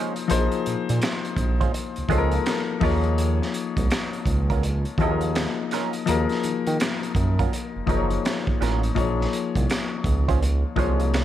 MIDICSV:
0, 0, Header, 1, 6, 480
1, 0, Start_track
1, 0, Tempo, 722892
1, 189, Time_signature, 4, 2, 24, 8
1, 7467, End_track
2, 0, Start_track
2, 0, Title_t, "Hollow-body jazz guitar"
2, 0, Program_c, 0, 26
2, 0, Note_on_c, 0, 56, 71
2, 0, Note_on_c, 0, 61, 67
2, 0, Note_on_c, 0, 65, 67
2, 0, Note_on_c, 0, 72, 72
2, 87, Note_off_c, 0, 56, 0
2, 89, Note_off_c, 0, 61, 0
2, 91, Note_off_c, 0, 65, 0
2, 93, Note_off_c, 0, 72, 0
2, 1066, Note_on_c, 0, 72, 67
2, 1071, Note_on_c, 0, 65, 55
2, 1076, Note_on_c, 0, 61, 61
2, 1080, Note_on_c, 0, 56, 53
2, 1143, Note_off_c, 0, 72, 0
2, 1146, Note_off_c, 0, 56, 0
2, 1146, Note_off_c, 0, 65, 0
2, 1148, Note_off_c, 0, 61, 0
2, 1392, Note_on_c, 0, 56, 94
2, 1400, Note_on_c, 0, 61, 87
2, 1403, Note_on_c, 0, 65, 79
2, 1406, Note_on_c, 0, 72, 94
2, 1552, Note_off_c, 0, 56, 0
2, 1555, Note_off_c, 0, 61, 0
2, 1557, Note_off_c, 0, 65, 0
2, 1559, Note_off_c, 0, 72, 0
2, 1878, Note_on_c, 0, 54, 67
2, 1879, Note_on_c, 0, 61, 72
2, 1882, Note_on_c, 0, 65, 76
2, 1887, Note_on_c, 0, 70, 72
2, 2006, Note_off_c, 0, 54, 0
2, 2006, Note_off_c, 0, 61, 0
2, 2008, Note_off_c, 0, 65, 0
2, 2010, Note_off_c, 0, 70, 0
2, 2988, Note_on_c, 0, 70, 68
2, 2995, Note_on_c, 0, 65, 62
2, 2996, Note_on_c, 0, 61, 55
2, 3003, Note_on_c, 0, 54, 53
2, 3064, Note_off_c, 0, 70, 0
2, 3068, Note_off_c, 0, 65, 0
2, 3069, Note_off_c, 0, 61, 0
2, 3072, Note_off_c, 0, 54, 0
2, 3324, Note_on_c, 0, 54, 84
2, 3328, Note_on_c, 0, 61, 82
2, 3330, Note_on_c, 0, 65, 84
2, 3336, Note_on_c, 0, 70, 83
2, 3477, Note_off_c, 0, 54, 0
2, 3479, Note_off_c, 0, 61, 0
2, 3481, Note_off_c, 0, 65, 0
2, 3484, Note_off_c, 0, 70, 0
2, 3801, Note_on_c, 0, 54, 60
2, 3806, Note_on_c, 0, 61, 71
2, 3807, Note_on_c, 0, 65, 64
2, 3811, Note_on_c, 0, 70, 74
2, 3927, Note_off_c, 0, 54, 0
2, 3930, Note_off_c, 0, 61, 0
2, 3930, Note_off_c, 0, 65, 0
2, 3932, Note_off_c, 0, 70, 0
2, 4908, Note_on_c, 0, 70, 56
2, 4914, Note_on_c, 0, 65, 57
2, 4916, Note_on_c, 0, 61, 52
2, 4919, Note_on_c, 0, 54, 49
2, 4984, Note_off_c, 0, 70, 0
2, 4987, Note_off_c, 0, 65, 0
2, 4988, Note_off_c, 0, 61, 0
2, 4990, Note_off_c, 0, 54, 0
2, 5236, Note_on_c, 0, 54, 61
2, 5241, Note_on_c, 0, 61, 57
2, 5246, Note_on_c, 0, 65, 64
2, 5248, Note_on_c, 0, 70, 76
2, 5365, Note_off_c, 0, 54, 0
2, 5367, Note_off_c, 0, 61, 0
2, 5370, Note_off_c, 0, 65, 0
2, 5371, Note_off_c, 0, 70, 0
2, 5715, Note_on_c, 0, 54, 58
2, 5719, Note_on_c, 0, 61, 66
2, 5723, Note_on_c, 0, 65, 65
2, 5729, Note_on_c, 0, 70, 67
2, 5844, Note_off_c, 0, 54, 0
2, 5846, Note_off_c, 0, 61, 0
2, 5848, Note_off_c, 0, 65, 0
2, 5851, Note_off_c, 0, 70, 0
2, 6828, Note_on_c, 0, 72, 63
2, 6833, Note_on_c, 0, 65, 61
2, 6839, Note_on_c, 0, 56, 51
2, 6839, Note_on_c, 0, 61, 63
2, 6905, Note_off_c, 0, 72, 0
2, 6907, Note_off_c, 0, 65, 0
2, 6910, Note_off_c, 0, 56, 0
2, 6910, Note_off_c, 0, 61, 0
2, 7154, Note_on_c, 0, 56, 84
2, 7159, Note_on_c, 0, 61, 72
2, 7161, Note_on_c, 0, 65, 85
2, 7167, Note_on_c, 0, 72, 85
2, 7312, Note_off_c, 0, 56, 0
2, 7315, Note_off_c, 0, 61, 0
2, 7316, Note_off_c, 0, 65, 0
2, 7319, Note_off_c, 0, 72, 0
2, 7467, End_track
3, 0, Start_track
3, 0, Title_t, "Upright piano"
3, 0, Program_c, 1, 0
3, 0, Control_c, 1, 64, 127
3, 0, Note_on_c, 1, 53, 79
3, 0, Note_on_c, 1, 58, 70
3, 0, Note_on_c, 1, 63, 68
3, 0, Note_on_c, 1, 68, 62
3, 0, Note_on_c, 1, 70, 65
3, 0, Note_on_c, 1, 72, 85
3, 96, Note_off_c, 1, 53, 0
3, 99, Note_off_c, 1, 58, 0
3, 102, Note_off_c, 1, 63, 0
3, 104, Note_off_c, 1, 68, 0
3, 127, Note_off_c, 1, 72, 0
3, 185, Note_on_c, 1, 53, 85
3, 190, Note_on_c, 1, 58, 70
3, 194, Note_on_c, 1, 63, 78
3, 199, Note_on_c, 1, 68, 79
3, 204, Note_on_c, 1, 72, 102
3, 1012, Note_off_c, 1, 53, 0
3, 1014, Note_off_c, 1, 58, 0
3, 1016, Note_off_c, 1, 63, 0
3, 1019, Note_off_c, 1, 68, 0
3, 1021, Note_off_c, 1, 72, 0
3, 1384, Note_on_c, 1, 53, 75
3, 1388, Note_on_c, 1, 58, 74
3, 1392, Note_on_c, 1, 63, 69
3, 1396, Note_on_c, 1, 68, 68
3, 1402, Note_on_c, 1, 69, 72
3, 1446, Note_off_c, 1, 70, 0
3, 1446, Note_on_c, 1, 70, 96
3, 1448, Note_off_c, 1, 69, 0
3, 1852, Note_off_c, 1, 53, 0
3, 1855, Note_off_c, 1, 58, 0
3, 1860, Note_off_c, 1, 63, 0
3, 1862, Note_on_c, 1, 53, 93
3, 1865, Note_off_c, 1, 68, 0
3, 1865, Note_on_c, 1, 58, 91
3, 1870, Note_on_c, 1, 63, 80
3, 1875, Note_on_c, 1, 68, 90
3, 1877, Control_c, 1, 64, 0
3, 1879, Note_on_c, 1, 73, 96
3, 1897, Note_off_c, 1, 70, 0
3, 1986, Control_c, 1, 64, 127
3, 2690, Note_off_c, 1, 53, 0
3, 2692, Note_off_c, 1, 58, 0
3, 2694, Note_off_c, 1, 63, 0
3, 2697, Note_off_c, 1, 68, 0
3, 2699, Note_off_c, 1, 73, 0
3, 3308, Note_on_c, 1, 53, 71
3, 3312, Note_on_c, 1, 58, 75
3, 3318, Note_on_c, 1, 63, 73
3, 3321, Note_on_c, 1, 68, 77
3, 3326, Note_on_c, 1, 75, 84
3, 3939, Note_off_c, 1, 53, 0
3, 3942, Note_off_c, 1, 58, 0
3, 3944, Note_off_c, 1, 63, 0
3, 3946, Note_off_c, 1, 68, 0
3, 3948, Note_off_c, 1, 75, 0
3, 4022, Note_on_c, 1, 53, 84
3, 4027, Note_on_c, 1, 58, 75
3, 4033, Note_on_c, 1, 63, 72
3, 4038, Note_on_c, 1, 68, 78
3, 4042, Note_on_c, 1, 70, 99
3, 4850, Note_off_c, 1, 53, 0
3, 4853, Note_off_c, 1, 58, 0
3, 4856, Note_off_c, 1, 63, 0
3, 4858, Note_off_c, 1, 68, 0
3, 4860, Note_off_c, 1, 70, 0
3, 5222, Note_on_c, 1, 53, 72
3, 5225, Note_on_c, 1, 58, 68
3, 5229, Note_on_c, 1, 63, 78
3, 5235, Note_on_c, 1, 68, 72
3, 5240, Note_on_c, 1, 72, 59
3, 5281, Note_on_c, 1, 73, 81
3, 5287, Note_off_c, 1, 72, 0
3, 5856, Note_off_c, 1, 53, 0
3, 5858, Note_off_c, 1, 58, 0
3, 5860, Note_off_c, 1, 63, 0
3, 5863, Note_off_c, 1, 68, 0
3, 5886, Note_off_c, 1, 73, 0
3, 5943, Note_on_c, 1, 53, 84
3, 5946, Note_on_c, 1, 58, 74
3, 5949, Note_on_c, 1, 63, 70
3, 5955, Note_on_c, 1, 68, 75
3, 5956, Control_c, 1, 64, 0
3, 5960, Note_on_c, 1, 73, 91
3, 6079, Control_c, 1, 64, 127
3, 6771, Note_off_c, 1, 53, 0
3, 6772, Note_off_c, 1, 58, 0
3, 6774, Note_off_c, 1, 63, 0
3, 6777, Note_off_c, 1, 68, 0
3, 6779, Note_off_c, 1, 73, 0
3, 7143, Note_on_c, 1, 53, 76
3, 7146, Note_on_c, 1, 58, 75
3, 7150, Note_on_c, 1, 63, 69
3, 7157, Note_on_c, 1, 68, 72
3, 7159, Note_on_c, 1, 73, 82
3, 7467, Note_off_c, 1, 53, 0
3, 7467, Note_off_c, 1, 58, 0
3, 7467, Note_off_c, 1, 63, 0
3, 7467, Note_off_c, 1, 68, 0
3, 7467, Note_off_c, 1, 73, 0
3, 7467, End_track
4, 0, Start_track
4, 0, Title_t, "Analog synth bass"
4, 0, Program_c, 2, 38
4, 206, Note_on_c, 2, 34, 108
4, 319, Note_off_c, 2, 34, 0
4, 446, Note_on_c, 2, 46, 48
4, 501, Note_off_c, 2, 46, 0
4, 596, Note_on_c, 2, 46, 101
4, 663, Note_off_c, 2, 46, 0
4, 914, Note_on_c, 2, 34, 82
4, 1107, Note_off_c, 2, 34, 0
4, 1315, Note_on_c, 2, 37, 48
4, 1347, Note_off_c, 2, 37, 0
4, 1391, Note_on_c, 2, 37, 93
4, 1585, Note_off_c, 2, 37, 0
4, 1873, Note_on_c, 2, 39, 94
4, 2261, Note_off_c, 2, 39, 0
4, 2509, Note_on_c, 2, 36, 92
4, 2579, Note_off_c, 2, 36, 0
4, 2831, Note_on_c, 2, 37, 85
4, 3220, Note_off_c, 2, 37, 0
4, 3311, Note_on_c, 2, 39, 91
4, 3626, Note_off_c, 2, 39, 0
4, 4042, Note_on_c, 2, 39, 115
4, 4157, Note_off_c, 2, 39, 0
4, 4282, Note_on_c, 2, 51, 51
4, 4338, Note_off_c, 2, 51, 0
4, 4430, Note_on_c, 2, 51, 89
4, 4499, Note_off_c, 2, 51, 0
4, 4752, Note_on_c, 2, 42, 95
4, 4946, Note_off_c, 2, 42, 0
4, 5153, Note_on_c, 2, 30, 46
4, 5186, Note_off_c, 2, 30, 0
4, 5235, Note_on_c, 2, 30, 97
4, 5427, Note_off_c, 2, 30, 0
4, 5723, Note_on_c, 2, 33, 89
4, 5912, Note_off_c, 2, 33, 0
4, 5959, Note_on_c, 2, 34, 110
4, 6150, Note_off_c, 2, 34, 0
4, 6350, Note_on_c, 2, 36, 86
4, 6419, Note_off_c, 2, 36, 0
4, 6675, Note_on_c, 2, 37, 94
4, 7063, Note_off_c, 2, 37, 0
4, 7155, Note_on_c, 2, 36, 92
4, 7467, Note_off_c, 2, 36, 0
4, 7467, End_track
5, 0, Start_track
5, 0, Title_t, "Muted hollow-body jazz guitar strokes"
5, 1154, Note_on_c, 9, 29, 41
5, 1220, Note_off_c, 9, 29, 0
5, 3085, Note_on_c, 9, 29, 37
5, 3152, Note_off_c, 9, 29, 0
5, 6920, Note_on_c, 9, 29, 45
5, 6987, Note_off_c, 9, 29, 0
5, 7467, End_track
6, 0, Start_track
6, 0, Title_t, "Drums"
6, 106, Note_on_c, 9, 42, 45
6, 172, Note_off_c, 9, 42, 0
6, 197, Note_on_c, 9, 42, 75
6, 263, Note_off_c, 9, 42, 0
6, 343, Note_on_c, 9, 42, 34
6, 409, Note_off_c, 9, 42, 0
6, 438, Note_on_c, 9, 42, 65
6, 504, Note_off_c, 9, 42, 0
6, 592, Note_on_c, 9, 42, 56
6, 658, Note_off_c, 9, 42, 0
6, 675, Note_on_c, 9, 42, 82
6, 683, Note_on_c, 9, 26, 81
6, 686, Note_on_c, 9, 38, 106
6, 741, Note_off_c, 9, 42, 0
6, 749, Note_off_c, 9, 26, 0
6, 752, Note_off_c, 9, 38, 0
6, 829, Note_on_c, 9, 42, 36
6, 895, Note_off_c, 9, 42, 0
6, 906, Note_on_c, 9, 36, 85
6, 913, Note_on_c, 9, 42, 64
6, 973, Note_off_c, 9, 36, 0
6, 979, Note_off_c, 9, 42, 0
6, 1069, Note_on_c, 9, 36, 90
6, 1070, Note_on_c, 9, 42, 44
6, 1136, Note_off_c, 9, 36, 0
6, 1136, Note_off_c, 9, 42, 0
6, 1157, Note_on_c, 9, 42, 75
6, 1224, Note_off_c, 9, 42, 0
6, 1301, Note_on_c, 9, 42, 34
6, 1368, Note_off_c, 9, 42, 0
6, 1385, Note_on_c, 9, 36, 79
6, 1396, Note_on_c, 9, 42, 60
6, 1452, Note_off_c, 9, 36, 0
6, 1462, Note_off_c, 9, 42, 0
6, 1537, Note_on_c, 9, 42, 49
6, 1604, Note_off_c, 9, 42, 0
6, 1633, Note_on_c, 9, 42, 69
6, 1637, Note_on_c, 9, 26, 84
6, 1640, Note_on_c, 9, 38, 103
6, 1699, Note_off_c, 9, 42, 0
6, 1704, Note_off_c, 9, 26, 0
6, 1707, Note_off_c, 9, 38, 0
6, 1868, Note_on_c, 9, 36, 107
6, 1873, Note_on_c, 9, 46, 49
6, 1883, Note_on_c, 9, 38, 37
6, 1934, Note_off_c, 9, 36, 0
6, 1939, Note_off_c, 9, 46, 0
6, 1949, Note_off_c, 9, 38, 0
6, 2017, Note_on_c, 9, 42, 45
6, 2083, Note_off_c, 9, 42, 0
6, 2112, Note_on_c, 9, 42, 79
6, 2179, Note_off_c, 9, 42, 0
6, 2273, Note_on_c, 9, 38, 31
6, 2340, Note_off_c, 9, 38, 0
6, 2351, Note_on_c, 9, 42, 68
6, 2418, Note_off_c, 9, 42, 0
6, 2502, Note_on_c, 9, 36, 89
6, 2506, Note_on_c, 9, 42, 63
6, 2568, Note_off_c, 9, 36, 0
6, 2572, Note_off_c, 9, 42, 0
6, 2592, Note_on_c, 9, 42, 79
6, 2600, Note_on_c, 9, 26, 94
6, 2603, Note_on_c, 9, 38, 114
6, 2659, Note_off_c, 9, 42, 0
6, 2667, Note_off_c, 9, 26, 0
6, 2670, Note_off_c, 9, 38, 0
6, 2744, Note_on_c, 9, 42, 37
6, 2810, Note_off_c, 9, 42, 0
6, 2826, Note_on_c, 9, 36, 79
6, 2832, Note_on_c, 9, 42, 65
6, 2892, Note_off_c, 9, 36, 0
6, 2898, Note_off_c, 9, 42, 0
6, 2988, Note_on_c, 9, 36, 87
6, 2989, Note_on_c, 9, 42, 47
6, 3054, Note_off_c, 9, 36, 0
6, 3055, Note_off_c, 9, 42, 0
6, 3076, Note_on_c, 9, 42, 77
6, 3143, Note_off_c, 9, 42, 0
6, 3221, Note_on_c, 9, 42, 34
6, 3288, Note_off_c, 9, 42, 0
6, 3305, Note_on_c, 9, 36, 83
6, 3319, Note_on_c, 9, 42, 54
6, 3372, Note_off_c, 9, 36, 0
6, 3386, Note_off_c, 9, 42, 0
6, 3459, Note_on_c, 9, 42, 48
6, 3525, Note_off_c, 9, 42, 0
6, 3555, Note_on_c, 9, 42, 75
6, 3559, Note_on_c, 9, 26, 85
6, 3562, Note_on_c, 9, 38, 111
6, 3621, Note_off_c, 9, 42, 0
6, 3626, Note_off_c, 9, 26, 0
6, 3629, Note_off_c, 9, 38, 0
6, 3793, Note_on_c, 9, 42, 70
6, 3803, Note_on_c, 9, 38, 32
6, 3859, Note_off_c, 9, 42, 0
6, 3870, Note_off_c, 9, 38, 0
6, 3938, Note_on_c, 9, 42, 47
6, 4004, Note_off_c, 9, 42, 0
6, 4031, Note_on_c, 9, 42, 82
6, 4097, Note_off_c, 9, 42, 0
6, 4178, Note_on_c, 9, 42, 30
6, 4192, Note_on_c, 9, 38, 30
6, 4245, Note_off_c, 9, 42, 0
6, 4258, Note_off_c, 9, 38, 0
6, 4273, Note_on_c, 9, 42, 64
6, 4339, Note_off_c, 9, 42, 0
6, 4426, Note_on_c, 9, 42, 55
6, 4493, Note_off_c, 9, 42, 0
6, 4515, Note_on_c, 9, 42, 81
6, 4523, Note_on_c, 9, 26, 91
6, 4526, Note_on_c, 9, 38, 110
6, 4582, Note_off_c, 9, 42, 0
6, 4589, Note_off_c, 9, 26, 0
6, 4593, Note_off_c, 9, 38, 0
6, 4670, Note_on_c, 9, 42, 37
6, 4736, Note_off_c, 9, 42, 0
6, 4746, Note_on_c, 9, 36, 84
6, 4754, Note_on_c, 9, 42, 67
6, 4813, Note_off_c, 9, 36, 0
6, 4820, Note_off_c, 9, 42, 0
6, 4909, Note_on_c, 9, 36, 87
6, 4910, Note_on_c, 9, 42, 49
6, 4975, Note_off_c, 9, 36, 0
6, 4976, Note_off_c, 9, 42, 0
6, 5001, Note_on_c, 9, 42, 74
6, 5067, Note_off_c, 9, 42, 0
6, 5227, Note_on_c, 9, 36, 78
6, 5240, Note_on_c, 9, 42, 63
6, 5293, Note_off_c, 9, 36, 0
6, 5306, Note_off_c, 9, 42, 0
6, 5381, Note_on_c, 9, 42, 43
6, 5448, Note_off_c, 9, 42, 0
6, 5479, Note_on_c, 9, 42, 65
6, 5484, Note_on_c, 9, 26, 83
6, 5487, Note_on_c, 9, 38, 107
6, 5546, Note_off_c, 9, 42, 0
6, 5550, Note_off_c, 9, 26, 0
6, 5553, Note_off_c, 9, 38, 0
6, 5626, Note_on_c, 9, 36, 97
6, 5692, Note_off_c, 9, 36, 0
6, 5722, Note_on_c, 9, 42, 76
6, 5733, Note_on_c, 9, 38, 34
6, 5789, Note_off_c, 9, 42, 0
6, 5799, Note_off_c, 9, 38, 0
6, 5866, Note_on_c, 9, 42, 45
6, 5932, Note_off_c, 9, 42, 0
6, 5951, Note_on_c, 9, 36, 108
6, 5959, Note_on_c, 9, 42, 80
6, 6017, Note_off_c, 9, 36, 0
6, 6025, Note_off_c, 9, 42, 0
6, 6118, Note_on_c, 9, 38, 29
6, 6184, Note_off_c, 9, 38, 0
6, 6195, Note_on_c, 9, 42, 70
6, 6261, Note_off_c, 9, 42, 0
6, 6344, Note_on_c, 9, 36, 84
6, 6351, Note_on_c, 9, 42, 60
6, 6411, Note_off_c, 9, 36, 0
6, 6417, Note_off_c, 9, 42, 0
6, 6438, Note_on_c, 9, 42, 82
6, 6446, Note_on_c, 9, 26, 92
6, 6449, Note_on_c, 9, 38, 107
6, 6505, Note_off_c, 9, 42, 0
6, 6513, Note_off_c, 9, 26, 0
6, 6516, Note_off_c, 9, 38, 0
6, 6668, Note_on_c, 9, 36, 94
6, 6677, Note_on_c, 9, 42, 66
6, 6734, Note_off_c, 9, 36, 0
6, 6743, Note_off_c, 9, 42, 0
6, 6830, Note_on_c, 9, 36, 92
6, 6836, Note_on_c, 9, 42, 45
6, 6897, Note_off_c, 9, 36, 0
6, 6902, Note_off_c, 9, 42, 0
6, 6922, Note_on_c, 9, 42, 72
6, 6989, Note_off_c, 9, 42, 0
6, 7147, Note_on_c, 9, 36, 79
6, 7162, Note_on_c, 9, 42, 67
6, 7213, Note_off_c, 9, 36, 0
6, 7229, Note_off_c, 9, 42, 0
6, 7302, Note_on_c, 9, 42, 47
6, 7368, Note_off_c, 9, 42, 0
6, 7395, Note_on_c, 9, 42, 67
6, 7399, Note_on_c, 9, 26, 90
6, 7402, Note_on_c, 9, 38, 108
6, 7461, Note_off_c, 9, 42, 0
6, 7465, Note_off_c, 9, 26, 0
6, 7467, Note_off_c, 9, 38, 0
6, 7467, End_track
0, 0, End_of_file